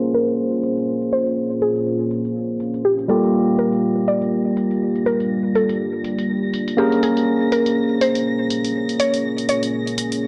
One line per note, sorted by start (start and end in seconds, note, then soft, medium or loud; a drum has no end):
0.00 3.05 A#2 medium
0.00 2.82 A#3 medium
0.00 2.82 C#4 medium
0.00 3.05 C#4 medium
0.00 10.27 F4 medium
0.00 0.86 G#4 medium
0.00 2.82 G#4 medium
0.00 0.13 A#4 medium
0.00 2.83 C5 medium
0.00 3.05 C5 medium
0.14 1.16 A#4 loud
0.14 closed hi-hat medium
0.28 closed hi-hat soft
0.63 closed hi-hat medium
0.77 closed hi-hat soft
0.88 6.74 A#3 medium
1.02 closed hi-hat soft
1.13 1.58 C5 loud
1.13 closed hi-hat medium
1.27 closed hi-hat soft
1.51 closed hi-hat soft
1.62 2.56 G#4 medium
1.62 closed hi-hat medium
1.76 closed hi-hat soft
2.11 closed hi-hat medium
2.25 closed hi-hat soft
2.60 closed hi-hat medium
2.74 closed hi-hat soft
2.85 2.96 G4 medium
2.99 closed hi-hat soft
3.08 6.75 G3 medium
3.08 6.76 A#3 medium
3.08 6.75 D4 medium
3.08 6.76 F4 medium
3.08 6.75 G4 medium
3.08 6.76 G4 medium
3.08 3.60 A4 medium
3.08 10.27 A#6 medium
3.08 closed hi-hat medium
3.23 closed hi-hat soft
3.59 4.09 A#4 loud
3.59 closed hi-hat medium
3.73 closed hi-hat soft
4.08 5.09 D5 loud
4.08 closed hi-hat medium
4.22 closed hi-hat soft
4.57 closed hi-hat medium
4.71 closed hi-hat soft
4.96 closed hi-hat soft
5.06 5.57 A#4 medium
5.06 closed hi-hat medium
5.20 closed hi-hat soft
5.55 6.50 A4 medium
5.55 closed hi-hat medium
5.69 closed hi-hat soft
6.04 closed hi-hat medium
6.18 closed hi-hat soft
6.54 closed hi-hat medium
6.68 closed hi-hat soft
6.77 10.27 A#2 medium
6.77 10.27 A#3 medium
6.77 10.27 C#4 medium
6.77 7.04 G4 medium
6.77 10.27 G#4 medium
6.77 10.27 A#4 medium
6.77 8.73 C5 medium
6.92 closed hi-hat soft
7.03 7.53 G#4 medium
7.03 closed hi-hat medium
7.17 closed hi-hat medium
7.52 7.98 A#4 medium
7.52 closed hi-hat medium
7.66 closed hi-hat soft
8.01 9.03 C5 loud
8.01 closed hi-hat medium
8.15 closed hi-hat medium
8.50 closed hi-hat medium
8.64 closed hi-hat medium
8.89 closed hi-hat soft
9.00 9.48 C#5 loud
9.00 closed hi-hat medium
9.14 closed hi-hat medium
9.38 closed hi-hat soft
9.49 10.27 C#5 medium
9.49 closed hi-hat medium
9.63 closed hi-hat medium
9.87 closed hi-hat soft
9.98 closed hi-hat medium
10.12 closed hi-hat medium